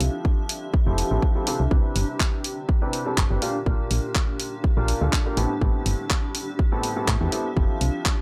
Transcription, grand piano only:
0.00 0.83 F3 medium
0.00 0.83 C4 medium
0.00 0.83 E4 medium
0.00 0.83 F4 medium
0.00 0.83 G4 medium
0.00 0.83 A4 medium
0.87 1.08 F3 medium
0.87 1.08 C4 medium
0.87 1.08 E4 medium
0.87 1.08 F4 medium
0.87 1.08 G4 medium
0.87 1.08 A4 medium
1.11 1.31 F3 medium
1.11 1.31 C4 medium
1.11 1.31 E4 medium
1.11 1.31 F4 medium
1.11 1.31 G4 medium
1.11 1.31 A4 medium
1.35 1.44 F3 medium
1.35 1.44 C4 medium
1.35 1.44 E4 medium
1.35 1.44 F4 medium
1.35 1.44 G4 medium
1.35 1.44 A4 medium
1.47 1.60 C3 medium
1.47 1.60 C4 medium
1.47 1.60 E4 medium
1.47 1.60 F4 medium
1.47 1.60 G4 medium
1.47 1.60 A4 loud
1.71 2.79 C3 medium
1.71 2.79 C4 medium
1.71 2.79 D4 medium
1.71 2.79 E4 medium
1.71 2.79 G4 medium
1.71 2.79 B4 medium
2.82 3.03 C3 medium
2.82 3.03 C4 medium
2.82 3.03 D4 medium
2.82 3.03 E4 medium
2.82 3.03 G4 medium
2.82 3.03 B4 loud
3.06 3.26 C3 medium
3.06 3.26 C4 medium
3.06 3.26 D4 medium
3.06 3.26 E4 medium
3.06 3.26 G4 medium
3.06 3.26 A4 medium
3.30 3.39 C4 medium
3.30 3.39 D4 medium
3.30 3.39 E4 medium
3.30 3.39 G4 medium
3.30 3.39 B4 medium
3.42 3.55 A#2 medium
3.42 3.55 A#3 medium
3.42 3.55 D4 medium
3.42 3.55 F4 medium
3.42 3.55 G4 medium
3.42 3.55 A#4 loud
3.66 4.74 A#2 medium
3.66 4.74 A#3 medium
3.66 4.74 D4 medium
3.66 4.74 F4 medium
3.66 4.74 G4 medium
3.66 4.74 A#4 medium
4.77 4.98 A#2 medium
4.77 4.98 A#3 medium
4.77 4.98 D4 medium
4.77 4.98 F4 medium
4.77 4.98 G4 medium
4.77 4.98 A#4 loud
5.01 5.21 A#2 medium
5.01 5.21 A#3 medium
5.01 5.21 D4 medium
5.01 5.21 F4 medium
5.01 5.21 G4 medium
5.01 5.21 A4 medium
5.26 5.34 A#3 medium
5.26 5.34 D4 medium
5.26 5.34 F4 medium
5.26 5.34 G4 medium
5.26 5.34 A#4 medium
5.37 5.50 A2 medium
5.37 5.50 B3 medium
5.37 5.50 C4 medium
5.37 5.50 E4 medium
5.37 5.50 G4 medium
5.37 5.50 A4 loud
5.61 6.69 A2 medium
5.61 6.69 B3 medium
5.61 6.69 C4 medium
5.61 6.69 E4 medium
5.61 6.69 G4 medium
5.61 6.69 A4 medium
6.72 6.93 A2 loud
6.72 6.93 B3 medium
6.72 6.93 C4 medium
6.72 6.93 E4 medium
6.72 6.93 G4 medium
6.72 6.93 A4 loud
6.96 7.16 A2 medium
6.96 7.16 B3 medium
6.96 7.16 C4 medium
6.96 7.16 E4 medium
6.96 7.16 G4 medium
6.96 7.16 A4 medium
7.21 7.29 A2 medium
7.21 7.29 B3 medium
7.21 7.29 C4 medium
7.21 7.29 E4 medium
7.21 7.29 G4 medium
7.21 7.29 A4 medium
7.32 7.46 B3 medium
7.32 7.46 C4 medium
7.32 7.46 E4 medium
7.32 7.46 G4 medium
7.32 7.46 A4 medium
7.57 8.22 F3 medium
7.57 8.22 C4 medium
7.57 8.22 E4 medium
7.57 8.22 F4 medium
7.57 8.22 G4 medium
7.57 8.22 A4 medium

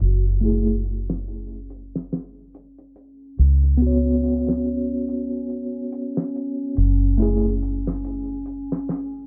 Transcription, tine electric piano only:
0.41 0.73 A3 medium
0.41 0.74 E4 medium
0.45 0.75 G#4 medium
3.77 6.73 B3 medium
3.82 6.75 F#4 medium
3.86 6.78 C#5 medium
7.18 7.49 A3 medium
7.18 7.50 E4 medium
7.22 7.52 G#4 medium

